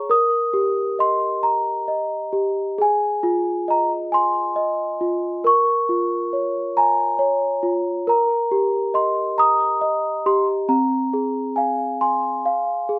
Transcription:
0.00 0.11 C#5 medium
0.00 0.10 A#5 medium
0.10 1.88 A#4 medium
0.10 0.95 D#6 medium
0.53 2.31 G4 medium
0.99 1.87 D#5 medium
0.99 1.46 C6 medium
1.43 2.78 A#5 medium
1.88 2.78 D#5 medium
2.33 2.78 G4 medium
2.78 4.57 G#4 medium
2.78 3.72 G#5 medium
3.23 5.00 F4 medium
3.68 4.55 D#5 medium
3.68 3.90 A#5 medium
4.12 5.45 G#5 medium
4.12 5.50 C6 medium
4.56 5.45 D#5 medium
5.01 5.45 F4 medium
5.44 7.19 A#4 medium
5.44 6.81 C#6 medium
5.89 7.62 F4 medium
6.33 7.18 C#5 medium
6.77 7.71 G#5 medium
6.77 8.07 A#5 medium
7.19 8.06 C#5 medium
7.63 8.06 F4 medium
8.07 9.81 A#4 medium
8.07 8.98 A#5 medium
8.51 10.25 G4 medium
8.94 9.80 D#5 medium
8.94 9.39 C6 medium
9.38 10.68 A#5 medium
9.38 10.28 D#6 medium
9.81 10.68 D#5 medium
10.26 10.69 G4 medium
10.26 10.45 C6 medium
10.69 12.45 C4 medium
10.69 11.59 A#5 medium
11.13 12.88 G#4 medium
11.56 12.44 F5 medium
11.56 11.97 G#5 medium
12.01 12.97 G#5 medium
12.01 12.99 C6 medium
12.45 12.99 F5 medium
12.89 12.99 G#4 medium

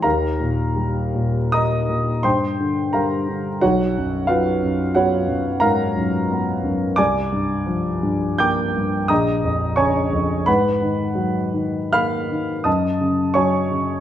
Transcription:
0.02 2.20 D#2 soft
0.02 1.49 A#4 soft
0.02 1.49 F5 soft
0.02 1.52 A#5 medium
0.40 0.98 A#2 soft
0.76 1.38 G3 soft
1.15 1.76 A#2 soft
1.52 2.11 A#3 soft
1.52 2.21 D#5 medium
1.52 2.21 A#5 soft
1.52 2.24 D#6 medium
1.89 2.24 A#2 soft
2.23 3.58 G2 soft
2.23 2.89 C5 soft
2.23 2.89 G5 medium
2.23 2.93 C6 medium
2.60 3.15 D3 soft
2.93 3.49 G3 soft
2.93 3.58 A#4 soft
2.93 3.58 F5 soft
2.93 3.61 A#5 medium
3.29 3.62 D3 soft
3.61 6.95 B1 soft
3.61 4.25 F#4 soft
3.61 4.25 C#5 soft
3.61 4.28 F#5 medium
3.98 4.50 F#2 soft
4.27 4.82 F#3 soft
4.27 4.92 F4 soft
4.27 4.91 B4 soft
4.27 4.95 F5 medium
4.63 5.16 F#2 soft
4.95 5.49 B3 soft
4.95 5.58 F#4 soft
4.95 5.58 C#5 soft
4.95 5.62 F#5 medium
5.28 5.83 F#2 soft
5.60 5.96 G#2 soft
5.60 6.94 A#4 soft
5.60 6.94 F5 soft
5.60 6.97 A#5 medium
5.97 6.51 F#2 soft
6.32 6.85 B3 soft
6.63 6.98 F#2 soft
6.96 9.06 C2 soft
6.96 8.35 D5 medium
6.96 8.35 G#5 medium
6.96 8.38 D6 medium
7.33 7.87 G2 soft
7.67 8.25 F3 soft
8.03 8.62 G2 soft
8.38 8.97 A#3 soft
8.38 9.06 G5 medium
8.38 9.06 D6 medium
8.38 9.10 G6 medium
8.78 9.11 G2 soft
9.08 10.43 A#1 soft
9.08 9.73 D#5 soft
9.08 9.73 A#5 medium
9.08 9.77 D#6 medium
9.44 9.98 F2 soft
9.76 10.33 C#3 soft
9.76 10.43 C#5 medium
9.76 10.43 G#5 medium
9.76 10.46 C#6 medium
10.13 10.47 F2 soft
10.46 12.63 G#2 soft
10.46 11.89 B4 medium
10.46 11.89 F#5 medium
10.46 11.92 B5 medium
10.82 11.37 D#3 soft
11.15 11.77 F#3 soft
11.53 12.17 D#3 soft
11.93 12.53 A#3 soft
11.93 12.62 F5 medium
11.93 12.62 B5 medium
11.93 12.66 F6 medium
12.31 12.66 D#3 soft
12.64 14.00 F#2 soft
12.64 13.31 D#5 soft
12.64 13.31 A5 soft
12.64 13.35 D#6 medium
13.01 13.57 C#3 soft
13.34 13.92 F#3 soft
13.34 14.00 C#5 medium
13.34 14.00 G#5 soft
13.34 14.00 C#6 medium
13.71 14.00 C#3 soft

